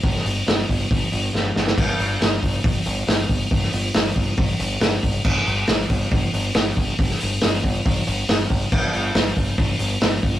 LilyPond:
<<
  \new Staff \with { instrumentName = "Picked electric bass" } { \clef bass \time 4/4 \key c \major \tempo 4 = 138 g,,8 g,,8 g,,8 g,,8 g,,8 g,,8 g,,8 g,,8 | g,,8 g,,8 g,,8 g,,8 g,,8 g,,8 g,,8 g,,8 | g,,8 g,,8 g,,8 g,,8 g,,8 g,,8 g,,8 g,,8 | g,,8 g,,8 g,,8 g,,8 g,,8 g,,8 g,,8 g,,8 |
g,,8 g,,8 g,,8 g,,8 g,,8 g,,8 g,,8 g,,8 | g,,8 g,,8 g,,8 g,,8 g,,8 g,,8 g,,8 g,,8 | }
  \new DrumStaff \with { instrumentName = "Drums" } \drummode { \time 4/4 <hho bd>16 sn16 hho8 <hho sn>8 <hho bd>8 <hho bd>8 hho8 sn8 sn16 sn16 | <cymc hho bd>8 hho8 <hho sn>8 <hho bd>8 <hho bd>8 hho8 <hho sn>8 <hho bd>8 | <hho bd>16 sn16 hho8 <hho sn>8 <hho bd>8 <hho bd>8 hho8 <hho sn>8 <hho bd>8 | <cymc bd>16 sn16 hho8 <hho sn>8 <hho bd>8 <hho bd>8 hho8 <hho sn>8 <hho bd>8 |
<hho bd>16 sn16 hho8 <hho sn>8 <hho bd>8 <hho bd>8 hho8 <hho sn>8 <hho bd>8 | <cymc bd>8 hho8 <hho sn>8 <hho bd>8 <hho bd>8 hho8 <hho sn>8 <hho bd>8 | }
>>